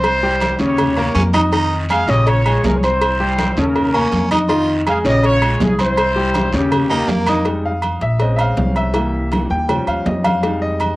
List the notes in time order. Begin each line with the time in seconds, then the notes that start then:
Already playing: C2 C4 E4 C5 C6
0.03 cowbell, high conga, low agogo, long guiro
0.23 G3 G4 G5, high conga
0.40 cowbell, high conga, low agogo, short guiro
0.59 D#2 C#3 C#4 G4 C#5, high conga, short guiro
0.64 C#5
0.77 cowbell, high conga, low conga, low agogo, long guiro
0.96 A#3 A#4 A#5, high conga, low conga, low agogo
1.15 F2 C#4, cowbell, high conga, short guiro
1.33 D#4 D#5 D#6, cowbell, high conga, low agogo, short guiro
1.52 D#3 D#4 D#5, cowbell, high conga, low agogo, long guiro
1.71 high conga
1.89 G#3 G#4 F5 G#5, cowbell, high conga, low agogo, short guiro
2.07 A#1 C#3 C#4 G4 C#5 D#5, cowbell, high conga, short guiro
2.27 F4 C#5, cowbell, high conga, low agogo, long guiro
2.46 G#3 G#4 G#5, high conga, low agogo
2.63 C2 C#4 A#4, cowbell, high conga, low timbale, short guiro
2.77 C#5
2.83 C4 E4 C5 C6, low agogo, short guiro
3.01 cowbell, high conga, low agogo, long guiro
3.20 G3 G4 G5, high conga
3.39 cowbell, high conga, low agogo, short guiro
3.57 D#2 C#3 C#4 A#4 C#5, high conga, short guiro
3.76 cowbell, high conga, low conga, low agogo, long guiro
3.94 A#3 C#4 A#4 A#5, high conga, low conga, low agogo
4.12 F2, cowbell, high conga, short guiro
4.31 D#4 D#5 D#6, cowbell, high conga, low agogo, short guiro
4.49 D#3 D#4 F4 D#5, cowbell, high conga, low agogo, long guiro
4.69 high conga
4.87 G#3 G#4 F5 G#5, cowbell, high conga, low agogo, short guiro
5.04 A#1 C#3 C#4 G4 C#5 D#5, cowbell, high conga, short guiro
5.23 F4 C#5, cowbell, high conga, low agogo, long guiro
5.42 G#3 G#4 G#5, high conga, low agogo
5.60 C2 C#4 G#4, cowbell, high conga, low timbale, short guiro
5.79 C4 E4 C5 C6, high conga, low agogo, short guiro
5.97 cowbell, high conga, low agogo, long guiro
6.16 G3 G4 G5, high conga
6.34 cowbell, high conga, low agogo, short guiro
6.53 D#2 C#3 A#3 C#4 G4 C#5, high conga, short guiro
6.72 cowbell, high conga, low conga, low agogo, long guiro
6.90 A#3 D#4 A#4 A#5, high conga, low conga, low agogo
7.08 F2 A#3, cowbell, high conga, low timbale, short guiro
7.27 D#4 D#5 D#6, cowbell, high conga, low agogo, short guiro
7.45 G3 G#3 D#4, cowbell, high conga, low agogo
7.66 F5, high conga
7.82 cowbell, high conga, low agogo
8.01 A#1 E5, cowbell, high conga
8.20 G#3 C4 C#4 D#5, cowbell, high conga, low agogo
8.36 E5, high conga, low agogo
8.41 F5
8.57 C2, cowbell, high conga, low timbale
8.76 E5, low agogo
8.94 E3 G3 A#3, cowbell, high conga, low agogo
9.15 high conga
9.32 cowbell, high conga, low agogo
9.50 D#2 G5, high conga
9.69 F3 G3 C#4, cowbell, high conga, low conga, low agogo
9.87 D#2 F5, high conga, low agogo
10.06 F2 D#5, cowbell, high conga, low timbale
10.24 F5, cowbell, high conga, low agogo
10.43 G3 G#3 D#4, cowbell, high conga, low agogo
10.62 D#5, high conga
10.80 cowbell, high conga, low agogo